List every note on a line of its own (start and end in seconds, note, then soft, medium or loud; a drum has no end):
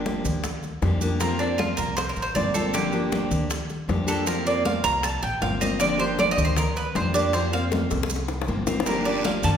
0.00 0.19 G1 medium
0.04 0.43 F3 soft
0.04 0.43 A#3 medium
0.04 0.44 D4 medium
0.04 0.44 G4 medium
0.04 high bongo medium
0.04 high conga medium
0.04 maracas soft
0.25 0.78 D2 medium
0.25 high bongo soft
0.25 high conga soft
0.25 low conga medium
0.25 maracas medium
0.44 muted steel-string acoustic guitar stroke medium
0.44 high bongo medium
0.44 high conga soft
0.44 maracas medium
0.63 high bongo soft
0.63 high conga soft
0.63 maracas soft
0.82 1.72 F2 medium
0.82 1.00 F3 soft
0.82 1.01 A#3 soft
0.82 1.01 D4 medium
0.82 1.00 G4 medium
0.82 high bongo soft
0.82 low bongo medium
0.82 high conga medium
0.82 maracas soft
1.01 1.18 F3 medium
1.01 1.19 A#3 medium
1.01 1.20 D4 medium
1.01 1.20 G4 medium
1.01 high bongo soft
1.01 high conga soft
1.01 maracas medium
1.19 1.38 F3 medium
1.19 1.39 A#3 medium
1.19 1.39 C4 medium
1.19 1.38 F4 medium
1.19 1.39 A#4 medium
1.19 high bongo medium
1.19 high conga soft
1.19 maracas medium
1.39 1.58 A#3 medium
1.39 1.59 C4 medium
1.39 1.58 D4 medium
1.39 1.58 F4 medium
1.39 high conga soft
1.39 maracas soft
1.58 1.96 F3 soft
1.58 1.97 A#3 medium
1.58 1.97 C4 medium
1.58 1.77 F4 medium
1.58 1.97 F4 medium
1.58 high bongo medium
1.58 high conga medium
1.58 maracas soft
1.77 2.14 C2 medium
1.77 1.96 A#4 medium
1.77 high bongo soft
1.77 high conga soft
1.77 maracas medium
1.97 2.09 C5 medium
1.97 muted steel-string acoustic guitar stroke medium
1.97 high bongo medium
1.97 high conga soft
1.97 maracas medium
2.09 2.22 A#4 medium
2.16 2.34 A1 medium
2.16 high bongo soft
2.16 high conga soft
2.16 maracas soft
2.22 2.35 C5 medium
2.35 3.26 G1 medium
2.35 2.54 F3 soft
2.35 2.54 A#3 medium
2.35 2.54 C4 medium
2.35 2.53 F4 medium
2.35 2.54 D5 medium
2.35 high bongo soft
2.35 low bongo medium
2.35 high conga medium
2.35 maracas soft
2.54 2.74 A#3 medium
2.54 2.74 C4 medium
2.54 2.73 F4 medium
2.54 2.73 A4 medium
2.54 high conga medium
2.54 maracas medium
2.73 2.92 D3 medium
2.73 2.93 F3 medium
2.73 2.92 A#3 medium
2.73 2.91 D4 medium
2.73 3.27 G4 medium
2.73 2.91 G4 medium
2.73 high bongo medium
2.73 high conga soft
2.73 maracas medium
2.92 3.10 F3 medium
2.92 3.10 A#3 medium
2.92 3.11 D4 medium
2.92 3.11 G4 medium
2.92 high conga soft
2.92 maracas soft
3.11 3.49 F3 soft
3.11 3.49 A#3 medium
3.11 3.49 D4 medium
3.11 3.49 G4 medium
3.11 high bongo medium
3.11 high conga medium
3.11 maracas soft
3.31 3.85 D2 medium
3.31 high bongo soft
3.31 high conga soft
3.31 low conga medium
3.31 maracas medium
3.49 muted steel-string acoustic guitar stroke medium
3.49 high bongo medium
3.49 high conga soft
3.49 maracas medium
3.70 high bongo soft
3.70 high conga soft
3.70 maracas soft
3.88 4.79 F2 medium
3.88 4.07 F3 medium
3.88 4.07 A#3 medium
3.88 4.06 D4 medium
3.88 4.06 G4 medium
3.88 high bongo soft
3.88 low bongo medium
3.88 high conga medium
3.88 maracas soft
4.07 4.25 F3 medium
4.07 4.26 A#3 medium
4.07 4.26 D4 medium
4.07 4.26 G4 medium
4.07 4.27 A4 medium
4.07 high bongo soft
4.07 high conga soft
4.07 maracas medium
4.26 4.45 F3 medium
4.26 4.45 A#3 medium
4.26 4.45 C4 medium
4.26 4.44 F4 medium
4.26 4.46 A#4 medium
4.26 high bongo medium
4.26 high conga soft
4.26 maracas medium
4.45 4.64 A#3 medium
4.45 4.65 C4 medium
4.45 4.64 F4 medium
4.45 4.65 D5 loud
4.45 high conga soft
4.45 maracas soft
4.65 5.02 F3 soft
4.65 5.03 A#3 medium
4.65 5.03 C4 medium
4.65 5.03 F4 medium
4.65 4.83 F5 medium
4.65 high bongo medium
4.65 high conga medium
4.65 maracas soft
4.84 5.20 C2 medium
4.84 5.03 A#5 loud
4.84 high bongo soft
4.84 high conga soft
4.84 maracas medium
5.03 5.22 A5 medium
5.03 muted steel-string acoustic guitar stroke medium
5.03 high bongo medium
5.03 high conga soft
5.03 maracas medium
5.23 5.41 A1 medium
5.23 5.41 G5 medium
5.23 high bongo soft
5.23 high conga soft
5.23 maracas soft
5.41 6.32 G1 medium
5.41 5.60 F3 medium
5.41 5.60 A#3 medium
5.41 5.60 C4 medium
5.41 5.59 F4 medium
5.41 5.61 F5 medium
5.41 high bongo soft
5.41 low bongo medium
5.41 high conga medium
5.41 maracas soft
5.60 5.79 A#3 medium
5.60 5.80 C4 medium
5.60 5.79 F4 medium
5.60 5.80 D#5 medium
5.60 high bongo soft
5.60 high conga medium
5.60 maracas medium
5.79 5.98 D3 medium
5.79 5.98 F3 medium
5.79 5.99 A#3 medium
5.79 5.98 D4 medium
5.79 5.97 G4 medium
5.79 5.99 D5 medium
5.79 high bongo medium
5.79 high conga soft
5.79 maracas medium
5.98 6.17 F3 medium
5.98 6.18 A#3 medium
5.98 6.18 D4 medium
5.98 6.17 G4 medium
5.98 6.18 C5 loud
5.98 high conga soft
5.98 maracas soft
6.18 6.55 F3 medium
6.18 6.56 A#3 medium
6.18 6.56 D4 medium
6.18 6.56 G4 medium
6.18 6.31 D5 medium
6.18 high bongo medium
6.18 high conga medium
6.18 maracas soft
6.31 6.44 D#5 medium
6.38 6.91 D2 medium
6.38 high bongo soft
6.38 high conga soft
6.38 low conga medium
6.38 maracas medium
6.45 6.57 C5 medium
6.56 6.76 A#4 medium
6.56 muted steel-string acoustic guitar stroke medium
6.56 high bongo medium
6.56 high conga soft
6.56 low conga medium
6.56 maracas medium
6.76 6.95 B4 medium
6.76 high bongo soft
6.76 high conga soft
6.76 maracas soft
6.95 7.85 F2 medium
6.95 7.13 F3 soft
6.95 7.14 A#3 medium
6.95 7.14 D4 medium
6.95 7.13 G4 medium
6.95 7.14 C5 medium
6.95 high bongo soft
6.95 low bongo medium
6.95 high conga medium
6.95 maracas soft
7.14 7.32 F3 medium
7.14 7.33 A#3 medium
7.14 7.33 D4 medium
7.14 7.33 G4 medium
7.14 7.33 D5 loud
7.14 high bongo soft
7.14 high conga soft
7.14 maracas medium
7.33 7.52 F3 medium
7.33 7.52 A#3 medium
7.33 7.52 C4 medium
7.33 7.51 F4 medium
7.33 7.52 C5 medium
7.33 high bongo medium
7.33 high conga soft
7.33 maracas medium
7.52 7.71 A#3 medium
7.52 7.71 C4 medium
7.52 7.71 F4 medium
7.52 7.65 F5 loud
7.52 high conga soft
7.52 maracas soft
7.71 8.08 F3 soft
7.71 8.09 A#3 medium
7.71 8.09 C4 medium
7.71 8.09 F4 medium
7.71 high bongo medium
7.71 high conga loud
7.71 maracas soft
7.91 8.45 C2 loud
7.91 high bongo medium
7.91 high conga soft
7.91 maracas medium
8.03 high bongo medium
8.10 muted steel-string acoustic guitar stroke medium
8.10 high conga soft
8.10 maracas medium
8.16 high bongo medium
8.28 low bongo medium
8.28 high conga soft
8.28 maracas soft
8.42 low bongo loud
8.47 9.38 G1 medium
8.47 8.66 F3 medium
8.47 8.67 A#3 medium
8.47 8.67 C4 medium
8.47 8.66 F4 medium
8.47 high conga medium
8.47 maracas soft
8.67 8.87 A#3 medium
8.67 8.86 C4 medium
8.67 8.86 F4 medium
8.67 low bongo medium
8.67 high conga medium
8.67 maracas medium
8.80 low bongo medium
8.86 9.05 D3 medium
8.86 9.06 F3 medium
8.86 9.06 A#3 medium
8.86 9.06 D4 medium
8.86 9.05 G4 medium
8.86 9.05 A#4 medium
8.86 high bongo medium
8.86 high conga soft
8.86 long guiro medium
8.86 maracas medium
9.05 9.24 F3 soft
9.05 9.25 A#3 medium
9.05 9.25 D4 medium
9.05 9.24 G4 medium
9.05 9.24 D5 medium
9.05 high conga soft
9.05 maracas soft
9.24 9.57 F3 soft
9.24 9.57 A#3 soft
9.24 9.57 D4 medium
9.24 9.57 G4 medium
9.24 9.43 F5 medium
9.24 high bongo medium
9.24 high conga loud
9.24 short guiro medium
9.24 maracas soft
9.43 9.57 G2 medium
9.43 9.57 A5 loud
9.43 high bongo soft
9.43 high conga soft
9.43 low conga medium
9.43 short guiro medium
9.43 maracas medium